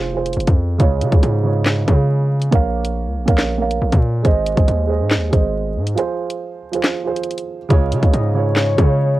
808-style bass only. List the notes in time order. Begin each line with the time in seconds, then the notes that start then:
Already playing: F1
0.37 F1
0.47 F2
0.80 C#2
1.01 C#3
1.12 C#2
1.23 G#2
1.88 C#3
2.52 A#1
3.06 C#2
3.17 A#1
3.28 A#1
3.82 A#1
3.93 A#2
4.25 G#1
4.57 G#1
4.68 D#2
5.00 G#2
5.17 D#2
5.33 G#1
5.76 G#2
7.70 C#2
7.92 C#3
8.03 C#2
8.13 G#2
8.78 C#3